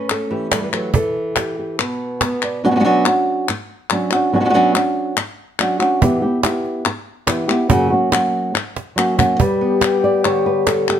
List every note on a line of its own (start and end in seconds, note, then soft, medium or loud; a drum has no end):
0.00 0.92 A3 medium
0.00 0.51 C#4 medium
0.00 0.11 B4 medium
0.09 0.52 A4 medium
0.09 cajon slap soft
0.09 clap medium
0.31 0.92 E3 medium
0.31 0.95 G4 medium
0.51 0.72 G3 medium
0.51 0.63 A4 medium
0.51 cajon slap medium
0.51 clap medium
0.64 0.74 B4 medium
0.72 0.94 F#3 medium
0.72 0.94 A4 medium
0.72 cajon slap soft
0.72 clap medium
0.94 1.79 E3 medium
0.94 1.80 A4 medium
0.94 cajon bass medium
1.36 1.58 G4 medium
1.36 cajon slap medium
1.36 clap medium
1.59 1.77 G4 soft
1.79 2.63 B2 medium
1.79 2.64 B4 medium
1.79 cajon slap soft
1.79 clap medium
2.21 2.62 B3 medium
2.21 cajon slap loud
2.21 clap medium
2.42 2.62 D5 soft
2.42 clap medium
2.64 2.83 B2 medium
2.64 2.70 F#3 medium
2.64 2.70 C#4 medium
2.64 2.70 D4 medium
2.64 2.71 F#4 medium
2.71 2.74 F#3 medium
2.71 2.75 C#4 medium
2.71 2.74 D4 medium
2.71 2.76 F#4 medium
2.76 2.79 F#3 medium
2.76 2.79 C#4 medium
2.76 2.79 D4 medium
2.76 2.80 F#4 medium
2.80 2.83 F#3 medium
2.80 2.84 C#4 medium
2.80 2.84 D4 medium
2.80 2.85 F#4 medium
2.84 3.05 B2 medium
2.84 3.05 F#3 medium
2.84 3.06 C#4 loud
2.84 3.05 D4 medium
2.84 3.05 F#4 medium
3.06 3.48 C#4 soft
3.06 3.49 D4 soft
3.06 3.48 F#4 medium
3.06 clap medium
3.49 muted nylon-string guitar stroke medium
3.49 clap medium
3.90 4.11 F#3 medium
3.90 4.12 C#4 medium
3.90 4.12 D4 medium
3.90 4.11 F#4 medium
3.90 clap medium
4.11 4.33 C#4 soft
4.11 4.33 D4 soft
4.11 4.32 F#4 medium
4.11 clap medium
4.33 4.52 B2 medium
4.33 4.39 F#3 medium
4.33 4.40 C#4 medium
4.33 4.39 D4 medium
4.33 4.40 F#4 loud
4.40 4.44 F#3 medium
4.40 4.45 C#4 medium
4.40 4.44 D4 medium
4.40 4.45 F#4 medium
4.45 4.48 F#3 medium
4.45 4.49 C#4 medium
4.45 4.49 D4 medium
4.45 4.49 F#4 medium
4.49 4.53 F#3 medium
4.49 4.53 C#4 medium
4.49 4.53 D4 medium
4.49 4.54 F#4 medium
4.54 4.74 B2 medium
4.54 4.74 F#3 medium
4.54 4.74 C#4 medium
4.54 4.75 D4 medium
4.54 4.73 F#4 medium
4.74 5.17 C#4 medium
4.74 5.16 D4 soft
4.74 5.16 F#4 medium
4.74 clap medium
5.17 muted nylon-string guitar stroke medium
5.17 clap medium
5.59 5.79 F#3 medium
5.59 5.80 C#4 medium
5.59 5.80 D4 medium
5.59 5.78 F#4 medium
5.59 clap medium
5.79 6.01 C#4 soft
5.79 6.02 D4 soft
5.79 6.00 F#4 medium
5.79 clap medium
6.01 6.22 E3 medium
6.01 6.22 B3 medium
6.01 6.23 E4 medium
6.01 6.21 G4 loud
6.01 cajon bass medium
6.22 6.44 B3 soft
6.22 6.44 E4 soft
6.22 6.42 G4 medium
6.43 6.85 B3 soft
6.43 6.86 E4 medium
6.43 6.85 G4 medium
6.43 cajon slap loud
6.43 clap medium
6.64 cajon slap soft
6.85 muted nylon-string guitar stroke medium
6.85 clap medium
7.27 7.48 E3 medium
7.27 7.49 B3 medium
7.27 7.48 E4 medium
7.27 7.47 G4 medium
7.27 cajon slap loud
7.27 clap medium
7.48 7.70 B3 soft
7.48 7.70 E4 medium
7.48 7.69 G4 medium
7.48 cajon slap soft
7.48 clap medium
7.69 7.90 F#2 medium
7.69 7.90 C#3 medium
7.69 7.91 F#3 medium
7.69 7.91 A#3 medium
7.69 7.91 C#4 medium
7.69 7.89 F#4 medium
7.69 cajon bass loud
7.90 8.13 F#3 medium
7.90 8.12 A#3 medium
7.90 8.12 C#4 medium
7.90 8.11 F#4 medium
8.12 8.54 F#3 soft
8.12 8.54 A#3 medium
8.12 8.53 C#4 medium
8.12 8.54 F#4 medium
8.12 cajon slap loud
8.12 clap medium
8.54 muted nylon-string guitar stroke medium
8.54 clap medium
8.76 cajon slap medium
8.96 9.17 F#3 medium
8.96 9.18 A#3 medium
8.96 9.18 C#4 medium
8.96 9.17 F#4 medium
8.96 clap medium
9.18 9.39 F#3 soft
9.18 9.39 A#3 soft
9.18 9.39 C#4 medium
9.18 9.39 F#4 medium
9.18 cajon bass medium
9.18 clap medium
9.39 11.00 G3 medium
9.39 11.00 G4 loud
9.39 10.45 B4 loud
9.39 cajon bass medium
9.61 11.00 B3 medium
9.81 cajon slap medium
9.81 clap medium
10.04 10.25 D5 medium
10.04 cajon slap soft
10.25 11.00 D3 medium
10.25 10.88 C#5 medium
10.25 clap medium
10.46 10.67 B4 medium
10.67 11.00 A4 medium
10.67 cajon slap medium
10.67 clap medium
10.88 11.00 G4 medium
10.88 cajon slap soft
10.88 clap medium